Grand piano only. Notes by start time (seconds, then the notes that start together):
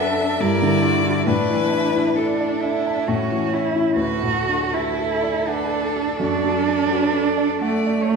Already playing: F#2 F#3 D4 F#4 A4 D5
0.00 F#5
0.20 A5
0.40 G2
0.62 D3
0.82 D4
1.04 E4
1.26 A2
1.50 E3
1.72 D4
1.95 E4
2.18 A4
2.40 D5
2.63 E5
2.86 A5
3.08 A2
3.32 E3
3.53 C#4
3.75 E4
3.96 D2
4.23 A2
4.48 D4
4.74 F#4
4.99 A4
5.23 D5
5.47 F#5
5.71 D5
5.96 A4
6.20 F#2
6.44 F#3
6.68 D4
6.91 F#4
7.14 A4
7.37 D5
7.61 F#5
7.86 D5